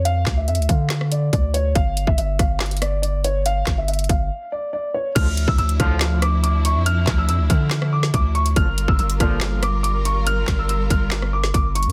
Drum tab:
CC |------------------------------------------------------------------------------------------------|------------------------------------------------------------------------------------------------|------------------------------------------------------------------------------------------------|x-----------------------------------------------------------------------------------------------|
HH |x-----------x-----------x---x---x---x-----------x-----------x-----------x-----------x-----------|x-----------x-----------x-----------x-----------x--x--x--x--x-----------x-----------x-----------|x-----------x-----------x--x--x--x--x-----------------------------------------------------------|x-----------x-----------x-----x-----x-----------x-----------x-----------x-----------x-----------|
CP |------------x-----------------------------------x-----------------------------------------------|------------------------------------------------x-----------------------------------------------|------------x-----------------------------------------------------------------------------------|------------------------------------------------x-----------------------------------------------|
SD |------------o-----------------------------------o-----r-----------------------------------------|------------------------------------r-----------o-----------r-----------------------------------|------------o-----------------------------------------------------------------------------------|------------------------------------r-----------o-----------r-----------------------------------|
BD |------------o-----------------------o-----------------------------------o-----------------------|o-----------------o-----------------o-----------------------------------------------------------|------------o-----------------------o-----------------------------------------------------------|o-----------------o-----------------o-----------------------------------------------------------|

CC |------------------------------------------------------------------------------------------------|------------------------------------------------------------------------------------------------|------------------------------------------------------------------------------------------------|
HH |x-----------x-----------x-----------x-----------x-----------------------x-----------x-----x-----|x-----------x-----------x-----x-----x-----------x-----------x-----------x-----------x-----------|x-----------x-----------x-----------x-----------x-----------------------x-----------x---x-------|
CP |------------x-----------------------------------x-----------------------------------------------|------------------------------------------------x-----------------------------------------------|------------x-----------------------------------x-----------------------------------------------|
SD |------------o-----------------------------------o-----r-----------o-----------------------------|------------------------------------r-----------o-----------r-----------------------------------|------------o-----------------------------------o-----r-----------o-----------------------------|
BD |------------o-----------------------o-----------------------------------o-----------------------|o-----------------o-----------------o-----------------------------------------------------------|------------o-----------------------o-----------------------------------o-----------------------|